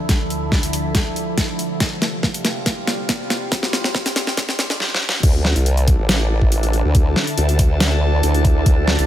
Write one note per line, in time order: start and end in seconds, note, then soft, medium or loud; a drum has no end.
0.00 1.77 D2 medium
0.00 1.77 D3 medium
0.00 1.77 F3 medium
0.00 1.77 E4 medium
0.00 1.77 A4 medium
0.09 kick medium
0.09 snare medium
0.09 closed hi-hat medium
0.30 closed hi-hat medium
0.52 kick medium
0.52 snare medium
0.63 closed hi-hat medium
0.73 open hi-hat medium
0.95 kick loud
0.95 snare medium
0.95 closed hi-hat medium
1.16 closed hi-hat medium
1.38 kick medium
1.38 snare medium
1.38 closed hi-hat medium
1.59 closed hi-hat medium
1.80 4.77 C2 medium
1.80 4.77 C3 medium
1.80 4.77 G3 medium
1.80 4.77 F4 medium
1.80 4.77 G4 medium
1.80 kick loud
1.80 snare medium
1.80 closed hi-hat medium
2.02 snare medium
2.02 closed hi-hat medium
2.23 kick loud
2.23 snare medium
2.34 closed hi-hat medium
2.45 snare medium
2.45 open hi-hat medium
2.66 kick loud
2.66 snare medium
2.66 closed hi-hat medium
2.87 snare medium
2.87 closed hi-hat medium
3.09 kick loud
3.09 snare medium
3.09 closed hi-hat medium
3.30 snare medium
3.30 closed hi-hat medium
3.52 kick loud
3.52 snare medium
3.52 closed hi-hat medium
3.63 snare medium
3.73 snare loud
3.73 closed hi-hat medium
3.84 snare medium
3.95 kick loud
3.95 snare medium
4.06 snare medium
4.06 closed hi-hat medium
4.16 snare loud
4.16 open hi-hat medium
4.27 snare medium
4.37 kick loud
4.37 snare loud
4.37 closed hi-hat medium
4.49 snare medium
4.59 snare loud
4.59 closed hi-hat medium
4.70 snare loud
4.80 snare medium
4.95 snare medium
5.09 snare loud
5.23 5.54 D2 loud
5.23 9.06 D3 medium
5.23 9.06 D4 medium
5.23 9.06 E4 medium
5.23 9.06 A4 medium
5.23 9.06 A5 medium
5.23 kick loud
5.23 closed hi-hat medium
5.23 crash loud
5.45 snare medium
5.56 5.97 C2 loud
5.56 closed hi-hat medium
5.66 closed hi-hat medium
5.77 closed hi-hat medium
5.88 kick loud
5.88 open hi-hat medium
5.99 6.83 A1 medium
6.09 snare loud
6.09 closed hi-hat medium
6.42 kick medium
6.52 closed hi-hat medium
6.63 closed hi-hat medium
6.73 closed hi-hat medium
6.84 7.14 D2 medium
6.95 kick loud
6.95 closed hi-hat medium
7.16 snare medium
7.27 closed hi-hat medium
7.38 8.22 D2 loud
7.38 closed hi-hat medium
7.49 closed hi-hat medium
7.59 kick loud
7.59 open hi-hat loud
7.80 snare loud
7.80 closed hi-hat medium
8.23 8.64 D2 loud
8.23 closed hi-hat medium
8.34 closed hi-hat medium
8.45 kick loud
8.45 closed hi-hat medium
8.66 8.97 D2 loud
8.66 kick loud
8.66 closed hi-hat medium
8.88 snare medium
8.99 9.06 C2 loud
8.99 closed hi-hat medium